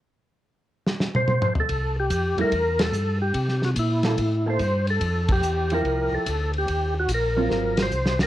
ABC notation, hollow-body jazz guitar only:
X:1
M:4/4
L:1/8
Q:"Swing" 1/4=144
K:C
V:1 name="Hollow-body jazz guitar"
z8 | z3 [G,A,E] z4 | z3 [_B,EA] z [B,EA] z2 | z3 [F,EG]3 z2 |
z3 [_G,CF]3 z2 |]